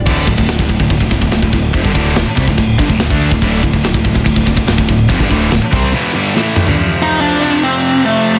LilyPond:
<<
  \new Staff \with { instrumentName = "Lead electric guitar" } { \time 4/4 \key d \minor \tempo 4 = 143 r1 | r1 | r1 | r1 |
r8 ees'8 d'4 c'4 a4 | }
  \new Staff \with { instrumentName = "Distorted electric guitar" } { \clef bass \time 4/4 \key d \minor <d, a, d>8 <d, a,>16 <d, a,>16 <d, a,>16 <d, a,>16 <d, a,>16 <d, a,>16 <d, a,>16 <d, a,>16 <d, a,>16 <d, a,>16 <d, a,>16 <d, a,>16 <d, a,>8 | <f, c>16 <g, d>16 <d, a, d>8 <d, a,>16 r16 <c g>16 <d, a,>16 <d, a,>8 <g, d>16 <d, a,>16 <d, a,>16 <d a d'>8 <d, a,>16 | <d, a, d>8 <d, a,>16 <d, a,>16 <d, a,>16 <d, a,>16 <d, a,>16 <d, a,>16 <d, a,>16 <d, a,>16 <d, a,>16 <d, a,>16 <d, a,>16 <d, a,>16 <d, a,>8 | <f, c>16 <g, d>16 <d, a, d>8 <d, a,>16 r16 <c g c'>8 <e, b, e>8 <g, d g>8 <a, e a>8. <g, d>16 |
<f, c f>4. <f, c f>2~ <f, c f>8 | }
  \new Staff \with { instrumentName = "Distorted electric guitar" } { \clef bass \time 4/4 \key d \minor <d, a, d>8 <d, a,>16 <d, a,>16 <d, a,>16 <d, a,>16 <d, a,>16 <d, a,>16 <d, a,>16 <d, a,>16 <d, a,>16 <d, a,>16 <d, a,>16 <d, a,>16 <d, a,>8 | <f, c>16 <g, d>16 <d, a, d>8 <d, a,>16 r16 <c g>16 <d, a,>16 <d, a,>8 <g, d>16 <d, a,>16 <d, a,>16 <d a d'>8 <d, a,>16 | <d, a, d>8 <d, a,>16 <d, a,>16 <d, a,>16 <d, a,>16 <d, a,>16 <d, a,>16 <d, a,>16 <d, a,>16 <d, a,>16 <d, a,>16 <d, a,>16 <d, a,>16 <d, a,>8 | <f, c>16 <g, d>16 <d, a, d>8 <d, a,>16 r16 <c g c'>8 <e, b, e>8 <g, d g>8 <a, e a>8. <g, d>16 |
r1 | }
  \new Staff \with { instrumentName = "Distorted electric guitar" } { \clef bass \time 4/4 \key d \minor <d, a, d>8 <d, a,>16 <d, a,>16 <d, a,>16 <d, a,>16 <d, a,>16 <d, a,>16 <d, a,>16 <d, a,>16 <d, a,>16 <d, a,>16 <d, a,>16 <d, a,>16 <d, a,>8 | <f, c>16 <g, d>16 <d, a, d>8 <d, a,>16 r16 <c g>16 <d, a,>16 <d, a,>8 <g, d>16 <d, a,>16 <d, a,>16 <d a d'>8 <d, a,>16 | <d, a, d>8 <d, a,>16 <d, a,>16 <d, a,>16 <d, a,>16 <d, a,>16 <d, a,>16 <d, a,>16 <d, a,>16 <d, a,>16 <d, a,>16 <d, a,>16 <d, a,>16 <d, a,>8 | <f, c>16 <g, d>16 <d, a, d>8 <d, a,>16 r16 <c g c'>8 <e, b, e>8 <g, d g>8 <a, e a>8. <g, d>16 |
r1 | }
  \new Staff \with { instrumentName = "Picked electric bass" } { \clef bass \time 4/4 \key d \minor d,,8 d,,16 d,,16 d,,16 d,,16 d,,16 d,,16 d,,16 d,,16 d,,16 d,,16 d,,16 d,,16 d,,8 | f,,16 g,,16 d,,8 d,,16 r16 c,16 d,,16 d,,8 g,,16 d,,16 d,,16 d,8 d,,16 | d,,8 d,,16 d,,16 d,,16 d,,16 d,,16 d,,16 d,,16 d,,16 d,,16 d,,16 d,,16 d,,16 d,,8 | f,,16 g,,16 d,,8 d,,16 r16 c,8 r2 |
r1 | }
  \new DrumStaff \with { instrumentName = "Drums" } \drummode { \time 4/4 <cymc bd>8 <bd cymr>16 bd16 <cymr sn>16 bd16 <bd cymr>16 bd16 <bd cymr>16 bd16 <bd cymr sn>16 bd16 <cymr sn>16 bd16 <bd cymr>8 | <bd cymr>16 bd16 <bd cymr>8 <cymr sn>8 <bd cymr>16 bd16 <bd cymr>8 <bd cymr sn>16 bd16 <cymr sn>16 bd16 cymr16 bd16 | <bd cymr>8 <bd cymr>16 bd16 <cymr sn>16 bd16 <bd cymr>16 bd16 <bd cymr>16 bd16 <bd cymr sn>16 bd16 <cymr sn>16 bd16 <bd cymr>8 | <bd cymr>16 bd16 <bd cymr>8 <cymr sn>8 <bd cymr>8 r4 sn8 toml16 tomfh16 |
r4 r4 r4 r4 | }
>>